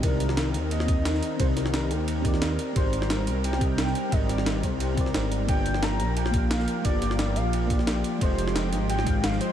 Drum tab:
RD |b-b-b-b-b-b-b-b-|b-b-b-b-b-b-b-b-|b-b-b-b-b-b-b-b-|b-b-b-b-b-b-b-b-|
HH |x-x-x-x-x-x-x-x-|x-x-x-x-x-x-x-x-|x-x-x-x-x-x-x-x-|x-x-x-x-x-x-x-x-|
SD |---oo----o--oo--|--ooo------oo---|---oo----o--oo--|--ooo------oo---|
BD |o---------o-----|o---------o-----|o---------o-----|o-----o---o-----|

RD |b-b-b-b-b-b-b-b-|b-b-b-b-b-b-b-b-|b-b-b-b-b-b-b-b-|
HH |x-x-x-x-x-x-x-x-|x-x-x-x-x-x-x-x-|x-x-x-x-x-x-x-x-|
SD |---oo----o--oo--|--ooo------oo---|---oo----o--oo--|
BD |o---------o-----|o---------o-----|o---------o-----|